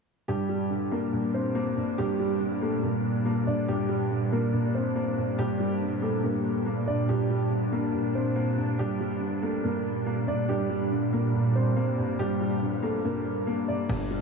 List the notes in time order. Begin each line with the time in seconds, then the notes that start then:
0.28 G2 A#2 G3 D4 G4
0.49 G3
0.70 D3
0.92 A#3 A#4
1.13 G2
1.34 C4 C5
1.55 A#3
1.77 G2
1.98 G2 G3 G4
2.20 G3
2.40 D3
2.62 A3 A#3 A4
2.83 G2 A#3 A#4
3.26 A#3
3.47 G2 D4 D5
3.68 G2 G3 G4
3.89 G3
4.11 D3
4.32 A#3 A#4
4.53 G2
4.75 C4 C5
4.96 A#3
5.17 G2
5.38 G2 G3 G4
5.60 G3
5.81 D3
6.02 A3 A#3 A4
6.24 G2 A#3 A#4
6.66 A#3
6.87 G2 D4 D5
7.09 G2 G3 D4 G4
7.30 G3
7.51 D3
7.72 A#3 A#4
7.93 G2
8.15 C4 C5
8.36 A#3
8.58 G2
8.79 G2 G3 G4
9.01 G3
9.21 D3
9.43 A3 A#3 A4
9.64 G2 A#3 A#4
10.06 A#3
10.28 G2 D4 D5
10.49 G2 A#2 G3 G4
10.70 G3
10.92 D3
11.13 A#3 A#4
11.34 G2
11.56 C4 C5
11.76 A#3
11.98 G2
12.19 G2 G3 G4
12.41 G3
12.62 D3
12.83 A3 A#3 A4
13.04 G2 A#3 A#4
13.47 A#3
13.68 G2 D4 D5
13.89 G1 G2, crash
14.11 G3